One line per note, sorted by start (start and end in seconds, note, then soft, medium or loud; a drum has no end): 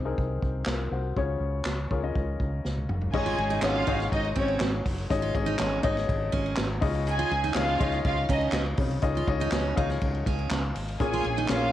0.00 0.14 C2 medium
0.00 1.18 C3 medium
0.00 0.05 C4 medium
0.00 0.05 D#4 medium
0.00 0.06 G#4 medium
0.00 0.92 C5 medium
0.05 0.76 C4 medium
0.05 0.76 D#4 medium
0.05 0.67 G#4 medium
0.05 0.66 A#4 medium
0.18 0.38 C2 medium
0.18 kick medium
0.42 0.63 C2 medium
0.42 kick medium
0.66 0.87 C2 medium
0.66 0.91 F4 soft
0.66 0.91 A#4 medium
0.66 snare medium
0.66 clap medium
0.91 1.12 C2 medium
0.91 1.39 F#4 soft
0.91 1.39 C5 medium
1.17 1.37 C#2 medium
1.17 1.87 C#3 medium
1.17 1.69 C#4 medium
1.17 1.69 F4 medium
1.17 1.70 G#4 medium
1.17 1.70 C#5 medium
1.17 kick medium
1.40 1.60 C#2 medium
1.65 1.86 C#2 medium
1.65 snare medium
1.65 clap medium
1.91 2.11 C#2 medium
1.91 1.99 C#4 medium
1.91 1.99 F4 medium
1.91 2.00 G#4 medium
1.91 2.00 A#4 medium
1.91 kick medium
2.03 2.73 C#4 medium
2.03 2.73 F4 medium
2.03 2.73 G#4 medium
2.03 2.73 D#5 medium
2.15 2.35 C#2 medium
2.15 kick medium
2.40 2.60 C#2 medium
2.40 kick medium
2.65 2.85 C#2 medium
2.65 snare soft
2.77 high tom soft
2.89 3.09 F#1 medium
2.89 mid tom medium
3.01 floor tom medium
3.13 3.34 G#1 loud
3.13 3.83 G#2 medium
3.13 3.49 C#4 medium
3.13 3.49 D#4 medium
3.13 3.59 G#4 medium
3.13 3.49 G#4 medium
3.13 3.49 C#5 medium
3.13 3.49 D#5 medium
3.13 3.60 G#5 loud
3.13 kick loud
3.13 crash loud
3.26 3.37 F4 medium
3.26 ride soft
3.38 3.58 G#1 loud
3.38 ride medium
3.50 3.61 D#4 medium
3.50 ride soft
3.61 3.83 G#1 medium
3.61 3.85 C#4 medium
3.61 3.80 C#4 medium
3.61 3.80 D#4 medium
3.61 4.09 F4 loud
3.61 3.80 G#4 medium
3.61 3.80 C#5 medium
3.61 4.09 F5 loud
3.61 3.81 F#5 medium
3.61 snare loud
3.61 clap medium
3.61 ride medium
3.75 ride soft
3.87 4.08 G#1 loud
3.87 4.58 C#4 medium
3.87 3.99 D#4 medium
3.87 4.57 D#4 medium
3.87 4.58 G#4 medium
3.87 4.58 C#5 medium
3.87 4.58 F#5 medium
3.87 kick loud
3.87 ride medium
4.00 snare soft
4.00 ride soft
4.12 4.32 G#1 loud
4.12 4.31 D#4 medium
4.12 4.32 D#5 loud
4.12 kick medium
4.12 ride medium
4.25 ride soft
4.36 4.56 G#1 loud
4.36 4.71 C4 medium
4.36 4.56 C#4 medium
4.36 4.57 C#5 loud
4.36 kick medium
4.36 ride medium
4.48 ride soft
4.60 4.81 G#1 loud
4.60 snare loud
4.60 clap medium
4.60 ride medium
4.85 5.05 F#1 medium
4.85 kick medium
4.85 open hi-hat medium
4.85 ride medium
4.98 ride soft
5.10 5.30 G#1 loud
5.10 5.80 G#2 medium
5.10 5.28 C#4 medium
5.10 5.28 D#4 medium
5.10 5.28 G#4 medium
5.10 5.28 C#5 medium
5.10 5.28 D#5 loud
5.10 kick loud
5.10 hi-hat pedal medium
5.10 ride medium
5.22 5.34 F4 medium
5.22 ride soft
5.35 5.55 G#1 medium
5.35 5.70 C#4 medium
5.35 5.70 D#4 medium
5.35 5.70 G#4 medium
5.35 5.70 C#5 medium
5.35 5.70 D#5 medium
5.35 kick medium
5.35 ride medium
5.46 5.58 D#4 medium
5.46 ride soft
5.58 5.80 G#1 loud
5.58 5.82 C#4 medium
5.58 snare loud
5.58 clap medium
5.58 ride medium
5.72 ride soft
5.83 6.04 G#1 medium
5.83 6.54 C#4 medium
5.83 6.54 D#4 medium
5.83 5.95 D#4 medium
5.83 6.54 G#4 medium
5.83 6.54 C#5 medium
5.83 6.54 D#5 loud
5.83 kick loud
5.83 ride medium
5.97 snare soft
5.97 ride soft
6.09 6.29 G#1 medium
6.09 kick loud
6.09 ride medium
6.32 6.53 G#1 loud
6.32 6.67 C#4 medium
6.32 kick medium
6.32 ride medium
6.46 ride soft
6.57 6.78 G#1 loud
6.57 snare loud
6.57 clap medium
6.57 ride medium
6.70 ride soft
6.81 7.22 C#2 loud
6.81 7.52 C#3 medium
6.81 7.41 D#4 medium
6.81 7.41 F4 medium
6.81 7.41 G#4 medium
6.81 7.41 C#5 medium
6.81 7.41 D#5 loud
6.81 kick loud
6.81 open hi-hat medium
6.81 ride medium
6.95 ride soft
7.07 7.53 G#4 medium
7.07 7.54 G#5 loud
7.07 hi-hat pedal medium
7.07 ride medium
7.19 7.31 F4 medium
7.19 ride soft
7.31 7.51 C#2 loud
7.31 ride medium
7.43 7.55 D#4 medium
7.43 ride soft
7.54 7.75 C#2 loud
7.54 7.79 C#4 medium
7.54 7.73 D#4 medium
7.54 7.73 F4 medium
7.54 8.02 F4 loud
7.54 7.73 G#4 medium
7.54 7.73 C#5 medium
7.54 7.73 F5 medium
7.54 8.02 F5 loud
7.54 snare loud
7.54 clap medium
7.54 ride medium
7.68 ride soft
7.79 8.00 C#2 loud
7.79 8.50 D#4 medium
7.79 7.92 D#4 medium
7.79 8.50 F4 medium
7.79 8.50 G#4 medium
7.79 8.50 C#5 medium
7.79 8.51 D#5 medium
7.79 kick loud
7.79 ride medium
7.92 snare soft
7.92 ride soft
8.04 8.25 C#2 loud
8.04 8.25 F4 medium
8.04 8.25 F5 loud
8.04 kick loud
8.04 ride medium
8.17 ride soft
8.28 8.49 C#2 loud
8.28 8.64 C#4 medium
8.28 8.50 D#4 medium
8.28 8.50 D#5 loud
8.28 kick medium
8.28 ride medium
8.41 ride soft
8.52 8.73 C#2 loud
8.52 snare loud
8.52 clap medium
8.52 ride medium
8.66 ride soft
8.77 8.98 C2 medium
8.77 9.48 C#3 medium
8.77 kick loud
8.77 open hi-hat medium
8.77 ride medium
8.91 ride soft
9.02 9.23 C#2 loud
9.02 9.20 D#4 medium
9.02 9.21 F4 medium
9.02 9.21 G#4 medium
9.02 9.21 C#5 medium
9.02 9.21 D#5 loud
9.02 kick loud
9.02 hi-hat pedal medium
9.02 ride medium
9.15 9.28 F4 medium
9.15 ride soft
9.27 9.48 C#2 loud
9.27 9.63 D#4 medium
9.27 9.63 F4 medium
9.27 9.63 G#4 medium
9.27 9.63 C#5 medium
9.27 9.63 D#5 loud
9.27 kick medium
9.27 ride medium
9.40 9.52 D#4 medium
9.40 ride soft
9.51 9.72 C#2 medium
9.51 9.76 C#4 medium
9.51 snare loud
9.51 clap medium
9.51 ride medium
9.65 ride soft
9.76 9.97 C#2 loud
9.76 10.47 D#4 medium
9.76 9.89 D#4 medium
9.76 10.47 F4 medium
9.76 10.47 G#4 medium
9.76 10.47 C#5 medium
9.76 10.47 F5 loud
9.76 kick loud
9.76 ride medium
9.90 snare soft
9.90 ride soft
10.01 10.22 C#2 loud
10.01 kick medium
10.01 ride medium
10.15 ride soft
10.26 10.47 C#2 loud
10.26 10.61 C#4 medium
10.26 kick loud
10.26 ride medium
10.39 ride soft
10.50 10.71 C#2 loud
10.50 snare loud
10.50 clap medium
10.50 ride medium
10.75 10.96 G#1 medium
10.75 open hi-hat medium
10.75 ride medium
10.88 ride soft
11.00 11.20 A#1 loud
11.00 11.70 A#2 medium
11.00 11.35 C#4 medium
11.00 11.35 F4 medium
11.00 11.46 G#4 medium
11.00 11.35 G#4 medium
11.00 11.35 A#4 medium
11.00 11.35 C#5 medium
11.00 11.46 G#5 loud
11.00 kick loud
11.00 hi-hat pedal medium
11.00 ride medium
11.13 11.25 F4 medium
11.13 ride soft
11.24 11.45 A#1 loud
11.24 ride medium
11.37 11.49 D#4 medium
11.37 ride soft
11.48 11.70 A#1 loud
11.48 11.67 C#4 medium
11.48 11.72 C#4 medium
11.48 11.67 F4 medium
11.48 11.72 F4 loud
11.48 11.67 G#4 medium
11.48 11.67 A#4 medium
11.48 11.67 C#5 medium
11.48 11.72 F5 loud
11.48 snare loud
11.48 clap medium
11.48 ride medium